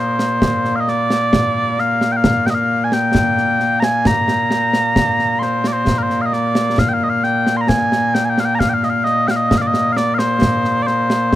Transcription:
0.00 11.35 A#2 medium
0.00 11.35 A#3 medium
0.00 0.76 C5 medium
0.19 snare medium
0.42 concert bass drum medium
0.42 snare medium
0.65 snare soft
0.76 0.80 F5 medium
0.80 0.89 D#5 medium
0.88 1.80 D5 loud
0.88 snare soft
1.10 snare medium
1.33 concert bass drum medium
1.33 snare loud
1.78 2.12 F5 loud
1.78 snare soft
2.01 snare medium
2.12 2.17 G5 medium
2.17 2.46 F5 loud
2.24 concert bass drum medium
2.24 snare loud
2.46 2.54 D#5 medium
2.46 2.50 G5 medium
2.46 snare medium
2.54 2.84 F5 medium
2.84 2.93 G#5 medium
2.92 3.80 G5 loud
2.92 snare medium
3.15 concert bass drum medium
3.15 snare medium
3.37 snare soft
3.60 snare soft
3.80 4.07 G#5 loud
3.80 3.84 A#5 loud
3.80 snare medium
4.05 5.39 A#5 loud
4.05 concert bass drum medium
4.05 snare loud
4.28 snare medium
4.51 snare medium
4.73 snare medium
4.96 concert bass drum medium
4.96 snare loud
5.19 snare soft
5.39 5.68 C5 medium
5.39 5.43 C6 medium
5.39 snare soft
5.64 5.73 D5 medium
5.64 snare medium
5.73 5.98 C5 medium
5.87 concert bass drum medium
5.87 snare medium
5.98 6.03 A#4 medium
6.03 6.22 C5 medium
6.10 snare soft
6.22 6.26 F5 medium
6.26 6.33 D#5 medium
6.33 6.79 D5 medium
6.33 snare soft
6.55 snare medium
6.78 6.89 F5 medium
6.78 concert bass drum medium
6.78 snare medium
6.89 6.94 G5 medium
6.94 7.03 F5 medium
7.03 7.09 D#5 medium
7.09 7.24 F5 medium
7.23 7.57 G5 medium
7.23 snare soft
7.47 snare medium
7.57 7.61 C6 medium
7.61 7.68 A#5 medium
7.68 8.14 G#5 loud
7.68 concert bass drum medium
7.68 snare medium
7.92 snare medium
8.14 8.25 G5 medium
8.14 snare medium
8.25 8.29 G#5 medium
8.29 8.40 G5 medium
8.38 8.45 F5 medium
8.38 snare medium
8.45 8.55 G5 loud
8.55 8.59 A#5 medium
8.59 8.69 F5 medium
8.59 concert bass drum soft
8.59 snare medium
8.69 8.74 G5 medium
8.74 8.84 F5 medium
8.83 8.89 D#5 medium
8.83 snare soft
8.89 9.04 F5 medium
9.04 9.28 D#5 loud
9.04 snare soft
9.28 9.36 F5 medium
9.28 9.31 G5 medium
9.28 snare medium
9.36 9.58 D#5 medium
9.51 concert bass drum medium
9.51 snare medium
9.58 9.67 D5 medium
9.58 9.61 F5 medium
9.67 9.92 D#5 medium
9.74 snare medium
9.92 9.97 F5 medium
9.97 10.14 D5 medium
9.97 snare medium
10.14 10.19 F5 medium
10.19 10.83 C5 medium
10.19 snare medium
10.42 concert bass drum medium
10.42 snare medium
10.64 snare soft
10.83 10.87 D5 medium
10.87 11.35 C5 medium
10.87 snare soft
11.10 snare medium

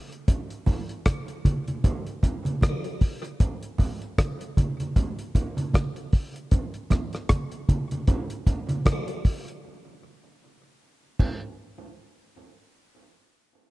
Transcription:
0.12 closed hi-hat soft
0.28 kick loud
0.28 closed hi-hat loud
0.28 low conga medium
0.50 closed hi-hat medium
0.66 kick medium
0.66 open hi-hat medium
0.66 low conga medium
0.89 closed hi-hat soft
1.06 kick loud
1.06 cross-stick loud
1.06 closed hi-hat medium
1.06 high conga soft
1.28 closed hi-hat soft
1.45 kick medium
1.45 closed hi-hat medium
1.45 high conga medium
1.68 closed hi-hat medium
1.68 high conga medium
1.84 kick loud
1.84 closed hi-hat medium
1.84 low conga medium
2.07 closed hi-hat medium
2.23 kick medium
2.23 closed hi-hat medium
2.23 low conga medium
2.45 closed hi-hat medium
2.45 high conga medium
2.61 kick loud
2.61 cross-stick loud
2.61 closed hi-hat medium
2.61 high conga medium
2.84 closed hi-hat soft
3.01 kick loud
3.01 open hi-hat medium
3.24 closed hi-hat soft
3.40 kick loud
3.40 closed hi-hat loud
3.40 low conga medium
3.63 closed hi-hat medium
3.78 kick medium
3.78 open hi-hat medium
3.78 low conga medium
4.02 closed hi-hat soft
4.18 kick loud
4.18 cross-stick loud
4.18 closed hi-hat medium
4.18 high conga soft
4.41 closed hi-hat soft
4.57 kick medium
4.57 closed hi-hat medium
4.57 high conga medium
4.80 closed hi-hat medium
4.80 high conga medium
4.96 kick loud
4.96 closed hi-hat medium
4.96 low conga medium
5.19 closed hi-hat medium
5.35 kick medium
5.35 closed hi-hat medium
5.35 low conga medium
5.57 closed hi-hat medium
5.57 high conga medium
5.73 kick loud
5.73 cross-stick loud
5.73 closed hi-hat medium
5.73 high conga medium
5.96 closed hi-hat soft
6.13 kick loud
6.13 open hi-hat medium
6.36 closed hi-hat medium
6.51 kick loud
6.51 closed hi-hat medium
6.51 low conga medium
6.74 closed hi-hat soft
6.90 kick medium
6.90 cross-stick medium
6.90 closed hi-hat medium
6.90 low conga medium
7.13 cross-stick medium
7.13 closed hi-hat soft
7.29 kick loud
7.29 cross-stick loud
7.29 closed hi-hat loud
7.29 high conga soft
7.51 closed hi-hat soft
7.69 kick medium
7.69 closed hi-hat medium
7.69 high conga medium
7.91 closed hi-hat medium
7.91 high conga medium
8.07 kick loud
8.07 closed hi-hat medium
8.07 low conga medium
8.30 closed hi-hat medium
8.47 kick medium
8.47 closed hi-hat medium
8.47 low conga medium
8.69 closed hi-hat medium
8.69 high conga medium
8.85 kick loud
8.85 cross-stick loud
8.85 closed hi-hat medium
8.85 high conga medium
9.08 closed hi-hat soft
9.25 kick loud
9.25 open hi-hat medium
9.48 closed hi-hat medium
11.19 kick medium
11.19 crash medium
11.19 low conga medium

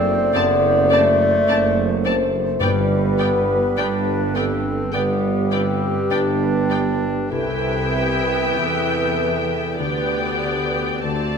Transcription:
0.00 0.20 F#1 medium
0.00 0.20 F#2 medium
0.00 0.33 F#2 medium
0.00 0.18 A3 medium
0.00 2.57 A3 medium
0.00 0.33 C4 medium
0.00 0.90 C4 medium
0.00 1.47 D4 medium
0.00 2.04 A4 medium
0.00 2.33 C5 medium
0.00 1.87 D5 loud
0.33 1.34 F#1 medium
0.33 1.34 F#2 medium
0.33 2.66 F#2 medium
0.33 0.94 B3 medium
0.33 0.43 C4 medium
0.33 0.41 D5 medium
0.33 0.43 A5 medium
0.90 2.35 A3 medium
0.90 2.65 C4 medium
0.90 0.99 C4 medium
0.90 0.98 D5 medium
0.90 1.01 A5 medium
1.48 2.47 F#1 medium
1.48 2.48 F#1 medium
1.48 2.47 F#2 medium
1.48 1.57 C4 medium
1.48 3.76 D4 medium
1.48 1.56 D5 medium
1.48 1.57 A5 medium
2.04 2.13 C4 medium
2.04 2.66 A4 medium
2.04 2.60 C5 medium
2.04 2.13 D5 medium
2.04 2.13 A5 medium
2.60 3.63 G1 medium
2.60 3.64 G1 medium
2.60 4.31 G2 medium
2.60 3.63 G2 medium
2.60 6.51 G2 medium
2.60 4.62 G3 medium
2.60 3.22 G3 medium
2.60 2.69 B3 medium
2.60 4.35 B4 medium
2.60 4.89 B4 medium
2.60 2.69 D5 medium
2.60 2.69 G5 medium
3.18 5.50 B3 soft
3.18 3.28 B3 medium
3.18 3.80 B3 medium
3.18 3.26 D5 medium
3.18 3.27 G5 soft
3.77 4.79 G1 medium
3.77 4.80 G1 medium
3.77 4.79 G2 medium
3.77 3.87 B3 medium
3.77 6.09 D4 soft
3.77 4.38 D4 medium
3.77 3.85 D5 medium
3.77 3.86 G5 medium
4.34 4.43 B3 medium
4.34 4.95 C4 medium
4.34 6.69 G4 soft
4.34 4.93 A4 medium
4.34 4.43 D5 soft
4.34 4.44 G5 soft
4.92 5.96 G1 medium
4.92 5.97 G1 medium
4.92 5.97 G2 medium
4.92 7.36 D3 soft
4.92 7.32 G3 medium
4.92 5.02 B3 soft
4.92 5.54 B3 medium
4.92 7.30 G4 medium
4.92 7.27 B4 medium
4.92 5.02 D5 medium
4.92 5.01 G5 medium
5.51 7.94 B3 soft
5.51 5.60 B3 soft
5.51 6.13 C4 medium
5.51 5.60 D5 medium
5.51 5.59 G5 soft
6.10 7.16 G1 medium
6.10 7.16 G2 medium
6.10 6.20 B3 medium
6.10 7.36 D4 soft
6.10 7.31 D4 medium
6.10 6.18 D5 medium
6.10 6.19 G5 soft
6.70 6.78 B3 soft
6.70 9.18 G4 soft
6.70 6.78 D5 soft
6.70 6.79 G5 soft
7.30 8.55 C2 medium
7.30 8.60 C2 medium
7.30 8.54 C3 medium
7.30 9.84 C3 medium
7.30 9.79 E3 medium
7.30 9.75 B3 medium
7.30 8.61 E4 medium
7.30 7.95 A4 medium
7.30 9.54 B4 medium
7.30 9.75 E5 medium
7.30 9.75 G5 medium
7.95 11.09 B3 soft
7.95 8.29 G4 medium
8.29 8.60 E4 medium
8.59 9.81 E2 soft
8.59 9.79 E2 soft
8.59 9.79 E3 soft
8.59 9.50 C4 medium
8.59 9.84 E4 soft
8.59 9.77 A4 medium
9.19 10.40 G4 soft
9.78 11.03 D2 soft
9.78 11.03 D3 soft
9.78 11.02 D3 soft
9.78 11.01 B3 soft
9.78 11.05 B3 medium
9.78 11.04 G4 medium
9.78 11.01 B4 soft
9.78 11.02 D5 soft
9.78 11.02 G5 soft
10.41 11.38 D4 soft
10.41 11.09 G4 soft
11.03 11.38 D2 soft
11.03 11.38 D3 soft
11.03 11.38 A3 soft
11.03 11.38 C4 soft
11.03 11.38 F#4 medium
11.03 11.38 C5 soft
11.03 11.38 D5 soft
11.03 11.38 A5 soft

